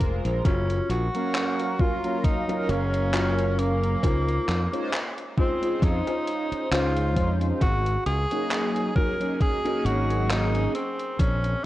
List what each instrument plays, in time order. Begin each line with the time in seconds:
Already playing: analog polysynth G#3 F4 A#4 C5
0.00 fingered electric bass F1, kick, closed hi-hat
0.25 fingered electric bass A#1, closed hi-hat
0.44 fingered electric bass F#1, clean electric guitar C#4 F4 F#4 A#4, tenor saxophone C#4, kick, closed hi-hat
0.70 closed hi-hat
0.89 fingered electric bass A#1, tenor saxophone F#4, closed hi-hat
1.14 analog polysynth F#3 A#3 C#4 A#4 F5, closed hi-hat
1.35 clap, closed hi-hat
1.59 muted clean electric guitar stroke, closed hi-hat
1.78 analog polysynth F#3 A#3 C#4 F4 A#4, clean electric guitar C#4 F4 F#4 A#4, tenor saxophone F4, kick
2.03 analog polysynth F#3 A#3 C#4 A#4 F5, closed hi-hat
2.24 tenor saxophone D#4, kick, closed hi-hat
2.47 analog polysynth F#3 A#3 C#4 A#4 F5, clean electric guitar C#4 F4 F#4 A#4, closed hi-hat
2.69 fingered electric bass F#1, tenor saxophone C#4, closed hi-hat
2.93 muted clean electric guitar stroke, closed hi-hat
3.13 clean electric guitar C#4 F4 F#4 A#4, clap, closed hi-hat
3.39 closed hi-hat
3.59 tenor saxophone A#3, closed hi-hat
3.84 closed hi-hat
4.03 fingered electric bass C#2, clean electric guitar C#4 D#4 F4 C5, kick, closed hi-hat
4.29 closed hi-hat
4.48 fingered electric bass F2, clap, closed hi-hat
4.72 analog polysynth G#3 C#4 D#4 F4 C5, closed hi-hat
4.93 clap, closed hi-hat
5.17 muted clean electric guitar stroke, closed hi-hat
5.37 analog polysynth G#3 C#4 D#4 F4 C5, tenor saxophone C4, clean electric guitar C#4 D#4 F4 C5, kick
5.61 analog polysynth G#3 C#4 D#4 F4 C5, closed hi-hat
5.82 fingered electric bass F2, tenor saxophone D#4, kick, closed hi-hat
6.07 clean electric guitar C#4 D#4 F4 C5, closed hi-hat
6.28 closed hi-hat
6.52 muted fingered electric bass stroke, muted clean electric guitar stroke, closed hi-hat
6.71 fingered electric bass C#2, analog polysynth G#3 C#4 D#4 F4 C5, clean electric guitar C#4 D#4 F4 C5, tenor saxophone F4, clap, closed hi-hat
6.97 closed hi-hat
7.17 fingered electric bass F2, kick, closed hi-hat
7.41 closed hi-hat
7.61 fingered electric bass G#1, clean electric guitar C#4 F#4 G#4 A#4, tenor saxophone F#4, kick, closed hi-hat
7.86 closed hi-hat
8.06 fingered electric bass C#2, tenor saxophone G#4, closed hi-hat
8.31 analog polysynth F#3 A#3 C#4 D#4 G#4, closed hi-hat
8.51 clap, closed hi-hat
8.76 muted clean electric guitar stroke, closed hi-hat
8.95 analog polysynth F#3 A#3 C#4 D#4 G#4, clean electric guitar C#4 F#4 G#4 A#4, tenor saxophone A#4, kick
9.19 analog polysynth F#3 A#3 C#4 D#4 G#4, closed hi-hat
9.41 tenor saxophone G#4, kick, closed hi-hat
9.64 analog polysynth F#3 A#3 C#4 D#4 G#4, clean electric guitar C#4 F#4 G#4 A#4, closed hi-hat
9.85 fingered electric bass G#1, tenor saxophone F#4, closed hi-hat
10.10 muted clean electric guitar stroke, closed hi-hat
10.29 clean electric guitar C#4 F#4 G#4 A#4, tenor saxophone D#4, clap, closed hi-hat
10.55 closed hi-hat
10.74 clean electric guitar C4 C#4 G#4 A#4, tenor saxophone C4, closed hi-hat
11.00 closed hi-hat
11.19 fingered electric bass A#1, tenor saxophone C#4, kick, closed hi-hat
11.44 closed hi-hat